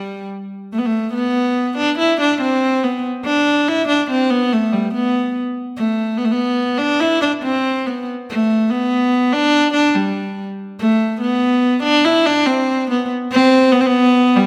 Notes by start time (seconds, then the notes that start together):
Already playing: G3
0.72 A3
0.78 B3
0.86 A3
1.13 B3
1.77 D4
1.98 E4
2.21 D4
2.41 C4
2.84 B3
3.25 D4
3.68 E4
3.88 D4
4.10 C4
4.30 B3
4.53 A3
4.72 G3
4.94 B3
5.77 A3
6.17 B3
6.25 A3
6.32 B3
6.78 D4
7.00 E4
7.22 D4
7.43 C4
7.86 B3
8.30 A3
8.70 B3
9.33 D4
9.73 D4
9.95 G3
10.79 A3
11.20 B3
11.83 D4
12.05 E4
12.26 D4
12.46 C4
12.90 B3
13.32 C4
13.72 B3
13.81 C4
13.86 B3
14.36 G3